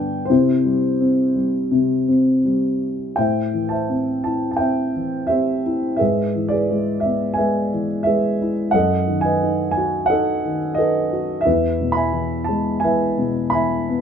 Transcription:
0.00 0.25 G2 medium
0.00 0.26 D3 soft
0.00 0.27 B3 medium
0.00 0.28 D4 medium
0.00 0.25 B4 medium
0.00 0.32 G5 medium
0.25 2.38 C5 medium
0.30 1.70 C3 medium
0.30 2.41 E4 medium
0.65 1.34 G3 medium
1.00 2.07 C4 medium
1.35 2.44 G3 medium
1.71 3.14 C3 medium
2.08 3.15 C4 soft
2.45 3.16 G3 soft
3.16 5.97 A2 medium
3.16 3.70 C5 soft
3.16 3.70 E5 soft
3.16 3.72 G5 medium
3.54 4.92 E3 soft
3.69 4.57 C5 soft
3.69 4.57 E5 soft
3.69 4.22 A5 medium
3.89 4.59 C4 soft
4.24 5.61 E4 soft
4.24 4.50 A5 medium
4.51 4.59 A5 soft
4.57 5.29 C4 soft
4.57 5.28 C5 soft
4.57 5.25 E5 soft
4.57 5.24 G5 medium
4.96 5.97 E3 soft
5.27 5.98 C4 soft
5.27 5.95 G4 soft
5.27 5.96 C5 soft
5.27 5.95 E5 medium
5.66 6.00 E4 soft
5.96 6.50 G#4 medium
5.96 6.50 B4 soft
5.96 6.52 E5 medium
6.01 8.71 G#2 medium
6.35 7.69 E3 soft
6.49 7.85 G#4 soft
6.49 7.36 B4 soft
6.49 7.04 D5 medium
6.71 7.38 G#3 soft
7.00 7.36 E5 medium
7.05 8.37 B3 soft
7.34 8.02 E5 medium
7.34 8.06 G#5 medium
7.38 8.06 G#3 soft
7.38 8.05 B4 medium
7.74 8.72 E3 soft
8.03 8.72 G#3 soft
8.03 8.70 G#4 medium
8.03 8.70 B4 medium
8.03 8.52 E5 medium
8.42 8.74 E4 soft
8.71 11.42 F#2 medium
8.71 10.07 A4 medium
8.71 9.23 D#5 medium
8.71 9.20 F#5 medium
9.08 10.40 D#3 soft
9.21 10.57 B4 medium
9.21 10.08 D#5 medium
9.21 9.70 G#5 medium
9.43 10.11 D#4 medium
9.71 10.09 G#5 medium
9.77 11.09 F#4 medium
10.06 10.77 A4 medium
10.06 10.73 D#5 medium
10.06 10.78 F#5 medium
10.13 10.77 D#4 soft
10.45 11.43 D#3 soft
10.74 11.42 A4 medium
10.74 11.42 B4 medium
10.74 11.46 D#5 medium
10.79 11.44 D#4 soft
11.13 11.45 F#4 soft
11.41 11.95 E5 medium
11.45 14.01 E2 medium
11.45 12.79 E4 medium
11.45 12.79 B4 medium
11.81 13.15 B2 soft
11.92 12.48 B5 medium
11.96 12.83 E5 medium
11.96 12.78 G#5 medium
12.13 12.82 E3 soft
12.44 12.82 A5 medium
12.49 13.86 G#3 soft
12.80 13.53 G#5 medium
12.84 13.52 E3 soft
12.84 14.01 B4 medium
12.84 13.53 E5 medium
13.18 14.01 B2 soft
13.50 14.01 B5 medium
13.54 14.01 E3 soft
13.54 14.01 E5 medium
13.54 14.01 G#5 medium
13.89 14.01 B3 soft

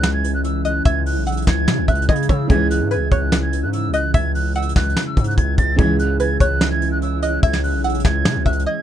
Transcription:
0.00 0.82 C#2 loud
0.00 2.45 C#3 medium
0.00 5.75 C#3 medium
0.00 5.75 E3 medium
0.00 2.45 G#3 medium
0.00 5.75 G#3 medium
0.00 2.46 E4 medium
0.00 5.75 E4 medium
0.00 2.47 G#4 medium
0.00 0.61 C#5 medium
0.00 0.12 F#6 medium
0.00 snare loud
0.14 0.31 G#6 medium
0.24 closed hi-hat medium
0.34 0.43 F#6 medium
0.44 0.62 E6 medium
0.44 closed hi-hat medium
0.65 0.84 D#5 medium
0.65 0.83 F#6 medium
0.65 closed hi-hat medium
0.85 1.18 C#2 loud
0.85 1.24 E5 loud
0.85 1.03 G#6 loud
0.85 kick loud
0.85 closed hi-hat medium
1.06 1.24 F#6 medium
1.06 open hi-hat medium
1.16 1.46 B1 loud
1.27 1.85 F#5 medium
1.27 1.44 E6 medium
1.27 closed hi-hat medium
1.32 closed hi-hat medium
1.37 closed hi-hat medium
1.42 closed hi-hat medium
1.47 1.69 C#2 loud
1.47 1.86 G#6 medium
1.47 kick loud
1.47 snare loud
1.68 1.79 C#3 loud
1.68 snare loud
1.78 1.88 C#2 loud
1.88 2.08 C#2 loud
1.88 2.08 E5 medium
1.88 2.06 F#6 medium
1.88 kick medium
1.88 closed hi-hat medium
1.95 closed hi-hat medium
2.02 closed hi-hat medium
2.09 2.29 C#3 loud
2.09 2.28 D#5 medium
2.09 2.26 G#6 medium
2.09 kick loud
2.09 closed hi-hat medium
2.16 closed hi-hat medium
2.22 closed hi-hat medium
2.29 2.49 C#3 loud
2.29 2.49 C#5 medium
2.29 2.47 E6 medium
2.29 kick loud
2.29 closed hi-hat medium
2.47 2.82 C#2 loud
2.47 2.79 G#2 medium
2.47 5.73 C#3 medium
2.47 2.79 C#3 loud
2.47 2.79 E3 loud
2.47 5.74 G#3 medium
2.47 5.75 E4 medium
2.47 5.75 G#4 medium
2.47 2.67 G#6 loud
2.47 kick loud
2.47 closed hi-hat medium
2.70 2.88 F#6 medium
2.70 closed hi-hat medium
2.81 2.98 G#2 loud
2.91 3.10 B4 medium
2.91 3.09 G#6 medium
2.91 closed hi-hat medium
2.96 3.11 C#2 loud
3.11 3.64 C#2 loud
3.11 3.90 C#5 medium
3.11 3.40 F#6 medium
3.11 kick loud
3.11 closed hi-hat medium
3.32 snare loud
3.42 3.60 G#6 medium
3.53 closed hi-hat medium
3.63 3.90 G#2 loud
3.63 3.72 F#6 medium
3.73 3.91 E6 medium
3.73 closed hi-hat medium
3.89 4.13 C#2 loud
3.94 4.13 D#5 medium
3.94 4.11 F#6 medium
3.94 closed hi-hat medium
4.14 4.73 C#2 loud
4.14 4.53 E5 loud
4.14 4.32 G#6 loud
4.14 kick loud
4.14 closed hi-hat medium
4.35 4.52 F#6 medium
4.35 open hi-hat medium
4.55 5.75 F#5 medium
4.55 4.73 E6 medium
4.55 closed hi-hat medium
4.62 closed hi-hat medium
4.69 closed hi-hat medium
4.76 4.96 C#2 loud
4.76 5.05 F#6 medium
4.76 kick loud
4.76 snare loud
4.83 closed hi-hat medium
4.90 closed hi-hat soft
4.97 snare loud
5.07 5.24 E6 medium
5.17 5.37 G#2 loud
5.17 kick medium
5.17 closed hi-hat medium
5.24 5.36 F#6 medium
5.24 closed hi-hat medium
5.31 closed hi-hat soft
5.38 5.57 C#2 loud
5.38 5.55 G#6 medium
5.38 kick loud
5.38 closed hi-hat medium
5.58 5.78 C#2 loud
5.58 5.76 A6 medium
5.58 kick loud
5.58 closed hi-hat medium
5.76 6.38 C#2 loud
5.76 6.08 G#2 loud
5.76 8.82 C#3 medium
5.76 6.08 C#3 loud
5.76 8.82 C#3 medium
5.76 6.08 E3 loud
5.76 8.82 E3 medium
5.76 8.82 G#3 medium
5.76 8.82 E4 medium
5.76 8.82 E4 loud
5.76 8.82 G#4 medium
5.76 5.96 G#6 loud
5.76 kick loud
5.76 closed hi-hat medium
5.99 6.17 F#6 medium
5.99 closed hi-hat medium
6.20 6.39 B4 medium
6.20 6.37 G#6 medium
6.20 closed hi-hat medium
6.40 7.39 C#2 loud
6.40 7.19 C#5 medium
6.40 6.69 F#6 medium
6.40 kick loud
6.40 closed hi-hat medium
6.61 snare loud
6.71 6.89 G#6 medium
6.82 closed hi-hat medium
6.92 7.00 F#6 loud
7.02 7.20 E6 medium
7.02 closed hi-hat medium
7.22 7.42 D#5 medium
7.22 7.40 F#6 medium
7.22 closed hi-hat medium
7.43 7.75 C#2 loud
7.43 7.82 E5 loud
7.43 7.61 G#6 loud
7.43 kick loud
7.43 closed hi-hat medium
7.53 snare medium
7.64 7.81 F#6 medium
7.64 open hi-hat medium
7.74 8.03 B1 loud
7.84 8.42 F#5 medium
7.84 8.02 E6 medium
7.84 closed hi-hat medium
7.89 closed hi-hat medium
7.94 closed hi-hat medium
8.00 closed hi-hat medium
8.05 8.27 C#2 loud
8.05 8.43 G#6 medium
8.05 kick loud
8.05 snare loud
8.25 8.37 C#3 loud
8.25 snare loud
8.36 8.45 C#2 loud
8.46 8.66 C#2 loud
8.46 8.65 E5 medium
8.46 8.63 F#6 medium
8.46 kick medium
8.46 closed hi-hat medium
8.53 closed hi-hat medium
8.60 closed hi-hat medium
8.66 8.82 D#5 medium
8.66 8.82 G#6 medium

